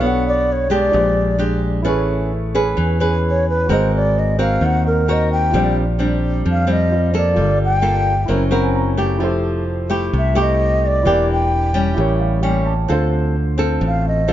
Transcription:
0.00 0.89 B1 medium
0.00 0.70 B3 medium
0.00 0.67 D4 medium
0.00 0.89 D4 soft
0.00 0.91 F#4 soft
0.00 0.67 A4 medium
0.00 0.92 A4 soft
0.00 0.67 C#5 medium
0.04 0.93 C#5 medium
0.04 0.27 F#5 medium
0.28 0.54 D5 medium
0.52 0.73 C#5 medium
0.70 1.35 G#3 medium
0.70 1.36 D4 medium
0.70 1.36 G4 medium
0.70 1.37 D5 medium
0.91 1.86 A#1 medium
0.91 1.83 A#2 medium
0.91 1.82 D4 soft
0.91 1.83 G4 soft
0.96 1.85 C5 medium
1.38 1.81 G#3 soft
1.38 1.81 D4 medium
1.38 1.82 G4 medium
1.82 2.74 A1 medium
1.82 2.75 A3 medium
1.82 2.31 C#4 medium
1.82 3.64 E4 medium
1.82 3.65 G#4 medium
1.82 2.31 G#4 medium
1.82 2.31 B4 medium
1.82 3.66 B4 medium
1.89 3.67 C#5 medium
2.55 2.97 C#4 medium
2.55 2.97 G#4 medium
2.55 2.97 B4 medium
2.77 3.71 E2 medium
2.77 3.67 E3 medium
3.00 3.66 C#4 medium
3.00 3.66 G#4 medium
3.00 3.66 B4 medium
3.29 3.48 C#5 medium
3.49 3.75 B4 medium
3.66 4.57 G#1 medium
3.66 4.59 G#3 medium
3.66 4.35 C4 medium
3.66 5.48 F#4 soft
3.66 4.35 F#4 medium
3.66 5.49 A#4 soft
3.66 4.35 A#4 medium
3.71 5.50 C5 soft
3.71 3.95 C5 medium
3.71 5.51 D#5 medium
3.96 4.20 D5 medium
4.19 4.40 D#5 medium
4.39 5.04 C4 medium
4.39 5.04 F#4 medium
4.39 5.04 A#4 medium
4.39 4.67 F5 medium
4.61 5.55 D#2 medium
4.61 5.51 D#3 medium
4.61 4.86 F#5 medium
4.87 5.13 A#4 medium
5.08 5.50 C4 medium
5.08 5.50 F#4 medium
5.08 5.50 A#4 medium
5.08 5.32 D#5 medium
5.32 5.74 G5 medium
5.50 6.42 A#1 medium
5.50 6.43 A#2 medium
5.50 5.83 G3 medium
5.50 5.83 C4 medium
5.50 6.87 F4 medium
5.50 6.88 G4 soft
5.50 6.89 C5 soft
5.55 5.83 D4 medium
5.55 6.90 D5 medium
5.99 6.64 G3 soft
5.99 6.65 C4 medium
5.99 6.65 D4 medium
6.45 7.39 F2 medium
6.45 7.35 F3 medium
6.51 6.70 F5 medium
6.67 7.10 G3 medium
6.67 7.10 C4 medium
6.72 7.13 D#5 medium
6.90 7.32 F4 soft
6.90 7.37 G4 soft
6.90 7.38 C5 soft
6.90 7.38 D5 soft
7.14 7.79 A#3 medium
7.14 7.80 F4 medium
7.14 7.80 A4 medium
7.14 7.59 D5 medium
7.34 8.25 G1 medium
7.34 8.27 G3 medium
7.34 8.26 F4 soft
7.34 8.27 A4 soft
7.40 8.29 D5 medium
7.64 8.27 G5 loud
7.82 8.14 A#3 medium
7.82 8.14 F4 medium
7.82 8.14 A4 medium
8.25 9.20 F#1 medium
8.25 9.18 F#3 medium
8.25 8.42 C4 medium
8.25 9.17 E4 medium
8.25 8.43 E4 medium
8.25 9.19 A#4 medium
8.25 8.43 A#4 medium
8.25 9.20 C5 soft
8.32 9.21 C#4 medium
8.51 8.94 C4 medium
8.51 8.94 E4 medium
8.51 8.94 A#4 medium
8.51 8.63 F#5 medium
8.63 8.74 G#5 soft
8.75 9.18 A#5 medium
8.97 9.63 A3 medium
8.97 9.64 E4 medium
8.97 9.64 G4 medium
9.18 10.09 F1 medium
9.18 10.10 F3 medium
9.18 10.32 E4 medium
9.18 10.33 G4 medium
9.18 10.34 A4 medium
9.24 10.35 C5 medium
9.90 10.32 A3 medium
9.90 10.33 E4 medium
9.90 10.33 G4 medium
10.13 11.07 C2 medium
10.13 11.03 C3 medium
10.18 10.37 E5 medium
10.34 11.01 A3 medium
10.34 11.01 E4 soft
10.34 11.01 E4 medium
10.34 11.03 G4 soft
10.34 11.02 G4 medium
10.34 11.06 A4 soft
10.34 11.06 D6 soft
10.41 10.88 D#5 medium
10.86 11.30 D5 medium
11.03 11.94 E1 medium
11.03 11.74 E3 medium
11.03 11.71 A#3 medium
11.03 11.93 E4 medium
11.03 11.95 G4 soft
11.03 11.96 A#4 soft
11.07 11.71 D4 medium
11.07 11.71 G4 medium
11.07 11.97 D5 medium
11.32 11.95 G5 loud
11.74 12.40 G3 medium
11.74 12.40 C#4 medium
11.94 12.86 A1 loud
11.94 12.87 A2 medium
11.94 12.86 E4 medium
11.94 12.87 G4 medium
11.98 12.88 A#4 soft
11.98 12.89 C#5 medium
12.20 12.41 F5 medium
12.42 12.73 G3 medium
12.42 12.73 A#3 medium
12.42 12.73 C#4 medium
12.42 12.64 G5 medium
12.66 12.88 A5 medium
12.88 13.78 D2 medium
12.88 13.79 D3 medium
12.88 13.35 C4 medium
12.88 14.33 F4 soft
12.88 13.35 F4 medium
12.88 13.35 A4 medium
12.88 14.33 A4 medium
12.88 14.33 C5 medium
13.58 14.23 C4 medium
13.58 14.24 F4 medium
13.58 14.24 A4 medium
13.81 14.33 A1 loud
13.81 14.33 A2 medium
13.87 14.06 F5 medium
14.08 14.33 D#5 medium
14.28 14.33 C4 medium
14.28 14.33 F4 medium
14.28 14.33 A4 medium

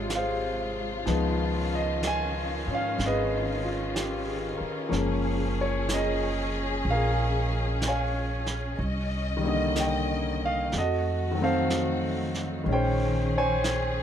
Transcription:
0.00 1.03 G#1 medium
0.00 1.02 C3 medium
0.00 1.07 C3 soft
0.00 1.04 F3 medium
0.00 1.02 G#3 medium
0.00 1.05 G#3 soft
0.00 1.06 D#4 medium
0.00 1.05 F4 medium
0.00 4.88 F4 medium
0.00 0.16 G#4 medium
0.00 0.17 C5 medium
0.00 1.08 C#5 medium
0.00 1.08 D#5 medium
0.10 brush sweep soft
0.10 snare soft
0.10 hi-hat pedal medium
0.15 1.05 G#4 soft
0.15 1.06 C5 soft
0.15 0.89 F5 medium
1.06 2.63 C#2 medium
1.06 4.88 D#3 medium
1.06 4.87 F3 medium
1.06 4.88 G#3 soft
1.06 4.92 B3 medium
1.06 10.68 C#4 medium
1.06 4.92 D#4 medium
1.06 brush sweep soft
1.06 snare soft
1.75 2.05 D#5 medium
2.03 brush sweep soft
2.03 snare soft
2.03 hi-hat pedal medium
2.07 2.65 G#5 medium
2.67 2.97 G#2 medium
2.67 4.89 C#4 soft
2.74 3.01 F5 medium
2.98 4.56 G#1 medium
2.98 brush sweep soft
2.98 snare soft
3.06 4.24 G#4 medium
3.06 4.92 B4 medium
3.06 4.60 D#5 medium
3.64 4.14 F4 soft
3.94 4.55 G4 soft
3.94 brush sweep soft
3.94 snare soft
3.94 hi-hat pedal soft
4.25 4.76 G#4 soft
4.58 5.08 A#4 soft
4.58 muted upright bass stroke soft
4.89 6.81 F#1 medium
4.89 8.77 F3 soft
4.89 8.74 F3 medium
4.89 8.77 G#3 soft
4.89 8.77 A#3 soft
4.89 8.77 C#4 soft
4.89 8.74 G#4 medium
4.89 brush sweep soft
4.89 snare soft
5.61 5.89 C#5 medium
5.89 brush sweep soft
5.89 snare soft
5.89 hi-hat pedal medium
5.94 6.91 G#4 medium
5.94 6.90 A#4 soft
5.94 6.84 D#5 medium
6.85 8.74 A#1 medium
6.85 brush sweep soft
6.91 8.78 G#4 medium
6.91 8.78 A#4 medium
6.91 7.87 F5 medium
7.82 brush sweep soft
7.82 snare soft
7.82 hi-hat pedal medium
7.88 8.78 C#5 medium
7.88 8.78 F5 medium
7.88 8.61 G#5 medium
8.46 snare soft
8.77 10.68 C2 medium
8.77 10.70 D#5 medium
8.77 brush sweep soft
9.37 10.69 D#3 soft
9.37 10.71 G3 soft
9.44 10.75 D3 medium
9.44 10.73 A#3 soft
9.49 9.79 D#5 medium
9.76 brush sweep soft
9.76 snare soft
9.76 hi-hat pedal medium
9.80 10.45 G5 medium
10.46 10.73 F5 medium
10.71 12.64 F2 medium
10.71 14.03 D#3 medium
10.71 12.65 A3 medium
10.71 12.65 F#4 medium
10.71 brush sweep soft
10.71 snare soft
10.78 12.66 F#4 medium
10.78 11.42 A4 medium
10.78 11.42 D#5 medium
11.31 12.62 D#3 medium
11.31 12.66 F#3 soft
11.38 12.68 A3 soft
11.38 12.69 C4 medium
11.44 12.66 A4 medium
11.44 12.67 C5 medium
11.44 12.74 F5 medium
11.70 brush sweep soft
11.70 snare soft
11.70 hi-hat pedal soft
12.34 snare soft
12.64 14.03 A#1 medium
12.64 14.03 D#3 soft
12.64 14.03 G#3 soft
12.64 14.03 C#4 medium
12.64 14.03 G#4 medium
12.64 brush sweep soft
12.69 14.03 C#4 medium
12.69 13.37 G5 medium
12.73 13.36 C5 medium
12.73 13.36 C#5 medium
13.38 14.03 C5 medium
13.38 14.03 C#5 medium
13.38 14.03 G#5 medium
13.64 brush sweep soft
13.64 snare soft
13.64 hi-hat pedal soft

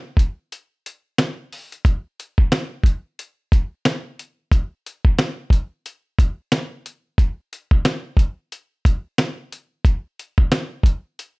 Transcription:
0.17 kick medium
0.17 closed hi-hat medium
0.52 closed hi-hat medium
0.86 closed hi-hat medium
1.18 snare loud
1.18 snare medium
1.18 closed hi-hat medium
1.53 open hi-hat medium
1.72 closed hi-hat medium
1.85 kick loud
1.85 closed hi-hat medium
2.20 closed hi-hat medium
2.38 kick medium
2.52 snare loud
2.52 snare medium
2.52 closed hi-hat medium
2.84 kick medium
2.84 closed hi-hat medium
3.19 closed hi-hat medium
3.52 kick medium
3.52 closed hi-hat medium
3.85 snare loud
3.85 snare medium
3.85 closed hi-hat medium
4.19 closed hi-hat medium
4.52 kick loud
4.52 closed hi-hat medium
4.86 closed hi-hat medium
5.05 kick medium
5.19 snare loud
5.19 snare medium
5.19 closed hi-hat medium
5.50 kick medium
5.50 closed hi-hat medium
5.86 closed hi-hat medium
6.19 kick loud
6.19 closed hi-hat medium
6.52 snare loud
6.52 snare medium
6.52 closed hi-hat medium
6.86 closed hi-hat medium
7.18 kick loud
7.18 closed hi-hat medium
7.53 closed hi-hat medium
7.71 kick medium
7.85 snare loud
7.85 snare medium
7.85 closed hi-hat medium
8.17 kick medium
8.17 closed hi-hat medium
8.52 closed hi-hat medium
8.85 kick medium
8.85 closed hi-hat medium
9.18 snare loud
9.18 snare medium
9.18 closed hi-hat medium
9.52 closed hi-hat medium
9.85 kick loud
9.85 closed hi-hat medium
10.19 closed hi-hat medium
10.38 kick medium
10.52 snare loud
10.52 snare medium
10.52 closed hi-hat medium
10.83 kick medium
10.83 closed hi-hat medium
11.19 closed hi-hat medium

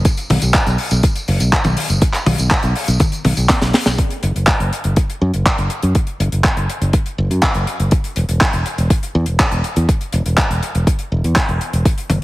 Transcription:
0.05 kick loud
0.05 closed hi-hat medium
0.05 tambourine medium
0.17 closed hi-hat medium
0.17 tambourine soft
0.30 0.39 B1 loud
0.30 open hi-hat loud
0.30 high tom medium
0.42 0.51 B1 medium
0.42 closed hi-hat medium
0.42 tambourine medium
0.54 kick loud
0.54 clap loud
0.54 closed hi-hat loud
0.54 tambourine medium
0.66 0.76 B1 medium
0.66 closed hi-hat medium
0.66 tambourine soft
0.78 open hi-hat loud
0.91 1.00 B1 medium
0.91 closed hi-hat medium
0.91 tambourine medium
1.03 kick loud
1.03 closed hi-hat loud
1.03 tambourine soft
1.16 closed hi-hat medium
1.16 tambourine soft
1.28 1.37 F#1 loud
1.28 open hi-hat loud
1.40 1.49 B1 medium
1.40 closed hi-hat medium
1.40 tambourine medium
1.52 kick loud
1.52 clap loud
1.52 closed hi-hat loud
1.52 tambourine medium
1.64 1.74 B1 medium
1.64 closed hi-hat soft
1.64 high tom medium
1.64 tambourine soft
1.77 open hi-hat loud
1.89 1.99 F#1 medium
1.89 closed hi-hat medium
1.89 tambourine medium
2.02 kick loud
2.02 closed hi-hat loud
2.02 tambourine medium
2.14 clap soft
2.14 closed hi-hat medium
2.14 tambourine soft
2.26 2.35 B1 medium
2.26 open hi-hat loud
2.26 high tom medium
2.38 2.48 B1 medium
2.38 closed hi-hat medium
2.38 tambourine medium
2.51 kick loud
2.51 clap loud
2.51 closed hi-hat medium
2.63 2.72 B1 medium
2.63 closed hi-hat medium
2.63 tambourine soft
2.76 open hi-hat loud
2.88 2.97 B1 medium
2.88 closed hi-hat medium
2.88 tambourine medium
3.00 kick loud
3.00 closed hi-hat loud
3.00 high tom medium
3.00 tambourine medium
3.12 closed hi-hat medium
3.12 tambourine soft
3.25 3.34 B1 loud
3.25 open hi-hat loud
3.25 high tom medium
3.37 3.46 B1 medium
3.37 closed hi-hat medium
3.37 tambourine medium
3.49 kick loud
3.49 snare medium
3.49 clap loud
3.49 closed hi-hat loud
3.49 tambourine medium
3.61 3.71 B1 medium
3.61 snare medium
3.61 closed hi-hat medium
3.61 tambourine soft
3.73 snare medium
3.73 open hi-hat loud
3.86 3.95 B1 medium
3.86 snare medium
3.86 closed hi-hat medium
3.86 tambourine medium
3.98 kick loud
3.98 closed hi-hat loud
4.10 closed hi-hat medium
4.23 4.32 F#1 medium
4.23 closed hi-hat medium
4.35 4.44 F#1 medium
4.35 closed hi-hat medium
4.47 kick loud
4.47 clap loud
4.47 closed hi-hat medium
4.60 4.69 F#1 medium
4.60 closed hi-hat medium
4.73 closed hi-hat medium
4.84 4.94 F#1 medium
4.84 closed hi-hat medium
4.96 kick loud
4.96 closed hi-hat loud
5.10 closed hi-hat medium
5.22 5.30 F#2 medium
5.34 5.43 F#1 medium
5.34 closed hi-hat medium
5.46 kick loud
5.46 clap loud
5.46 closed hi-hat medium
5.58 5.67 F#1 medium
5.58 closed hi-hat medium
5.70 closed hi-hat medium
5.83 5.92 F#2 medium
5.83 closed hi-hat medium
5.95 kick loud
5.95 closed hi-hat medium
6.07 closed hi-hat medium
6.20 6.29 F#1 medium
6.20 closed hi-hat medium
6.32 6.41 F#1 medium
6.32 closed hi-hat medium
6.44 kick loud
6.44 clap loud
6.44 closed hi-hat loud
6.57 6.66 F#1 medium
6.57 closed hi-hat medium
6.70 closed hi-hat medium
6.81 6.90 F#1 medium
6.81 closed hi-hat medium
6.93 kick loud
6.93 closed hi-hat loud
7.06 closed hi-hat medium
7.18 7.27 F#1 loud
7.31 7.39 F#2 medium
7.31 closed hi-hat medium
7.42 kick loud
7.42 clap loud
7.42 closed hi-hat loud
7.54 7.64 F#1 medium
7.54 closed hi-hat medium
7.67 closed hi-hat medium
7.80 7.89 F#1 medium
7.80 closed hi-hat medium
7.91 kick loud
7.91 closed hi-hat medium
8.04 closed hi-hat medium
8.16 8.26 E1 medium
8.16 closed hi-hat medium
8.29 8.38 E1 medium
8.29 closed hi-hat medium
8.41 kick loud
8.41 clap loud
8.41 closed hi-hat medium
8.53 8.62 E1 medium
8.53 closed hi-hat soft
8.66 closed hi-hat medium
8.78 8.87 E1 medium
8.78 closed hi-hat medium
8.90 kick loud
8.90 closed hi-hat loud
9.03 closed hi-hat medium
9.15 9.24 E2 loud
9.26 9.36 E1 medium
9.26 closed hi-hat medium
9.39 kick loud
9.39 clap loud
9.39 closed hi-hat loud
9.52 9.61 E1 medium
9.52 closed hi-hat medium
9.64 closed hi-hat medium
9.76 9.85 E2 medium
9.76 closed hi-hat medium
9.89 kick loud
9.89 closed hi-hat medium
10.01 closed hi-hat soft
10.13 10.22 E1 medium
10.13 closed hi-hat medium
10.26 10.35 E1 medium
10.26 closed hi-hat medium
10.38 kick loud
10.38 clap loud
10.38 closed hi-hat medium
10.50 10.59 E1 medium
10.50 closed hi-hat medium
10.63 closed hi-hat medium
10.75 10.84 E1 medium
10.75 closed hi-hat medium
10.87 kick loud
10.87 closed hi-hat loud
10.99 closed hi-hat medium
11.12 11.21 E1 medium
11.24 11.33 E2 medium
11.24 closed hi-hat medium
11.36 kick loud
11.36 clap loud
11.36 closed hi-hat loud
11.48 11.58 E1 medium
11.48 closed hi-hat soft
11.61 closed hi-hat medium
11.73 11.82 E1 medium
11.73 closed hi-hat medium
11.85 kick loud
11.85 closed hi-hat loud
11.98 closed hi-hat medium
12.10 12.19 F#1 medium
12.10 closed hi-hat medium
12.10 high tom medium

